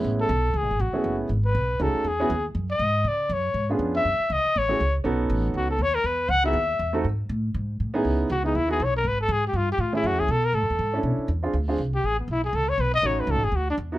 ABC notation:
X:1
M:4/4
L:1/8
Q:"Swing" 1/4=240
K:C#m
V:1 name="Trumpet"
z A3 G2 F2- | F z2 B3 A2 | G3 z2 d3 | =d2 c3 z2 e- |
e2 d2 c3 z | z4 F A c ^A | B2 f e4- e | z8 |
z2 F D E G c ^A | B A G =G ^E G E =E | F G A ^A =A4 | z6 z =G |
G B, E G A c B d | c B A G F =D z2 |]
V:2 name="Grand piano"
[A,,G,B,CE]2 z4 z [A,B,CEG]- | [A,B,CEG]2 z4 [A,CDFG]2 | z [B,CEFG] z6 | z4 z [B,C=D^EG]3 |
z4 z [A,CEFG] z2 | [B,CDFA]4- [B,CDFA] z3 | z3 [B,DEFG] z3 [A,^B,DFA] | z6 z [B,CDEG]- |
[B,CDEG]2 z [B,DEG] z [B,DEF] z2 | z6 z [A,CEG]- | [A,CEG]2 z4 z [C=DEA]- | [C=DEA]2 z [^B,D^EG] z [=CD=F_A] z2 |
z8 | [A,CDF]3 z4 [B,DEF] |]
V:3 name="Upright bass" clef=bass
A,,,2 B,,,2 (3C,, A,,, G,,, A,,, z | F,,,2 G,,,2 B,,,2 C,, z | E,,2 D,,2 F,,2 G,,2 | C,2 F,,2 G,,2 ^E,,2 |
F,, z C,, z A,,,2 C,,2 | B,,,2 A,,,2 C,,2 D,,2 | E,,2 C,,2 D,,2 E,,2 | G,,2 A,,2 G,,2 A,,2 |
C,,2 C,,2 D,,2 B,,,2 | G,,,2 G,,2 =G,,2 A,,2 | (3F,, E,, C,, B,,2 (3A,, F,, E,, G,,2 | B,, z E,,2 =D,,2 =C,,2 |
A,,,2 B,,,2 C,,2 B,,,2 | A,,,2 (3C,, A,,, F,,, =D,,2 E,,2 |]